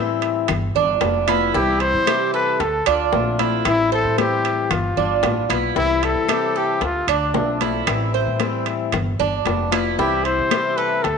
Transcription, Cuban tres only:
0, 0, Header, 1, 2, 480
1, 0, Start_track
1, 0, Key_signature, 0, "major"
1, 0, Tempo, 527704
1, 1405, Time_signature, 4, 2, 24, 8
1, 10168, End_track
2, 0, Start_track
2, 0, Title_t, "Cuban tres"
2, 0, Program_c, 0, 25
2, 0, Note_on_c, 0, 72, 69
2, 192, Note_off_c, 0, 72, 0
2, 688, Note_on_c, 0, 62, 76
2, 1152, Note_off_c, 0, 62, 0
2, 1170, Note_on_c, 0, 64, 83
2, 1400, Note_off_c, 0, 64, 0
2, 1410, Note_on_c, 0, 64, 77
2, 1872, Note_off_c, 0, 64, 0
2, 1889, Note_on_c, 0, 67, 65
2, 2119, Note_off_c, 0, 67, 0
2, 2127, Note_on_c, 0, 69, 76
2, 2591, Note_off_c, 0, 69, 0
2, 2608, Note_on_c, 0, 62, 94
2, 3071, Note_off_c, 0, 62, 0
2, 3085, Note_on_c, 0, 64, 69
2, 3549, Note_off_c, 0, 64, 0
2, 3566, Note_on_c, 0, 72, 70
2, 4030, Note_off_c, 0, 72, 0
2, 4523, Note_on_c, 0, 62, 70
2, 4988, Note_off_c, 0, 62, 0
2, 5000, Note_on_c, 0, 64, 85
2, 5232, Note_off_c, 0, 64, 0
2, 5242, Note_on_c, 0, 64, 67
2, 5708, Note_off_c, 0, 64, 0
2, 5723, Note_on_c, 0, 67, 61
2, 5955, Note_off_c, 0, 67, 0
2, 5964, Note_on_c, 0, 69, 67
2, 6429, Note_off_c, 0, 69, 0
2, 6447, Note_on_c, 0, 62, 86
2, 6911, Note_off_c, 0, 62, 0
2, 6929, Note_on_c, 0, 64, 70
2, 7392, Note_off_c, 0, 64, 0
2, 7406, Note_on_c, 0, 72, 67
2, 7871, Note_off_c, 0, 72, 0
2, 8365, Note_on_c, 0, 62, 85
2, 8831, Note_off_c, 0, 62, 0
2, 8845, Note_on_c, 0, 64, 90
2, 9074, Note_off_c, 0, 64, 0
2, 9085, Note_on_c, 0, 64, 73
2, 9552, Note_off_c, 0, 64, 0
2, 9564, Note_on_c, 0, 67, 55
2, 9798, Note_off_c, 0, 67, 0
2, 9802, Note_on_c, 0, 69, 77
2, 10168, Note_off_c, 0, 69, 0
2, 10168, End_track
0, 0, End_of_file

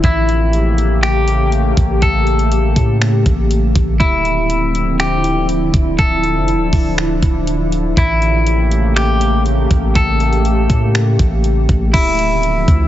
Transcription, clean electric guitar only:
0, 0, Header, 1, 2, 480
1, 0, Start_track
1, 0, Key_signature, -1, "minor"
1, 0, Tempo, 495868
1, 36, Time_signature, 4, 2, 24, 8
1, 12467, End_track
2, 0, Start_track
2, 0, Title_t, "Clean electric guitar"
2, 0, Program_c, 0, 27
2, 44, Note_on_c, 0, 64, 97
2, 961, Note_off_c, 0, 64, 0
2, 995, Note_on_c, 0, 67, 87
2, 1446, Note_off_c, 0, 67, 0
2, 1959, Note_on_c, 0, 69, 97
2, 2879, Note_off_c, 0, 69, 0
2, 3870, Note_on_c, 0, 64, 99
2, 4794, Note_off_c, 0, 64, 0
2, 4836, Note_on_c, 0, 67, 88
2, 5287, Note_off_c, 0, 67, 0
2, 5795, Note_on_c, 0, 69, 102
2, 6717, Note_off_c, 0, 69, 0
2, 7722, Note_on_c, 0, 64, 99
2, 8640, Note_off_c, 0, 64, 0
2, 8675, Note_on_c, 0, 67, 89
2, 9127, Note_off_c, 0, 67, 0
2, 9640, Note_on_c, 0, 69, 93
2, 10559, Note_off_c, 0, 69, 0
2, 11553, Note_on_c, 0, 64, 99
2, 12467, Note_off_c, 0, 64, 0
2, 12467, End_track
0, 0, End_of_file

